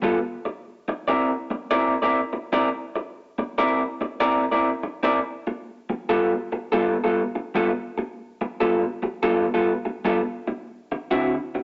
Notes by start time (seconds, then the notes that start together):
0.02 G3 B3 F4 A4
0.45 muted clean electric guitar stroke
0.88 muted clean electric guitar stroke
1.08 C4 E4 A#4 D5
1.50 muted clean electric guitar stroke
1.71 C4 E4 A#4 D5
2.02 C4 E4 A#4 D5
2.33 muted clean electric guitar stroke
2.53 C4 E4 A#4 D5
2.95 muted clean electric guitar stroke
3.38 muted clean electric guitar stroke
3.58 C4 E4 A#4 D5
4.01 muted clean electric guitar stroke
4.20 C4 E4 A#4 D5
4.51 C4 E4 A#4 D5
4.83 muted clean electric guitar stroke
5.03 C4 E4 A#4 D5
5.47 muted clean electric guitar stroke
5.90 muted clean electric guitar stroke
6.09 G3 B3 F4 A4
6.52 muted clean electric guitar stroke
6.72 G3 B3 F4 A4
7.04 G3 B3 F4 A4
7.35 muted clean electric guitar stroke
7.55 G3 B3 F4 A4
7.98 muted clean electric guitar stroke
8.41 muted clean electric guitar stroke
8.60 G3 B3 F4 A4
9.03 muted clean electric guitar stroke
9.23 G3 B3 F4 A4
9.54 G3 B3 F4 A4
9.85 muted clean electric guitar stroke
10.05 G3 B3 F4 A4
10.47 muted clean electric guitar stroke
10.92 muted clean electric guitar stroke
11.11 D3 C4 E4 F#4
11.55 muted clean electric guitar stroke